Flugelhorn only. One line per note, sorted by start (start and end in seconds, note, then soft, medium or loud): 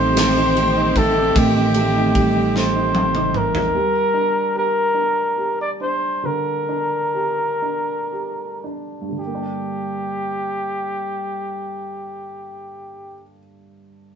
0.00 0.99 C5 loud
0.97 1.40 A4 medium
1.38 2.56 G4 medium
2.58 3.39 C5 medium
3.37 4.57 A#4 loud
4.58 5.57 A#4 medium
5.61 5.71 D5 medium
5.82 6.27 C5 medium
6.26 8.65 A#4 medium
9.20 13.24 G4 medium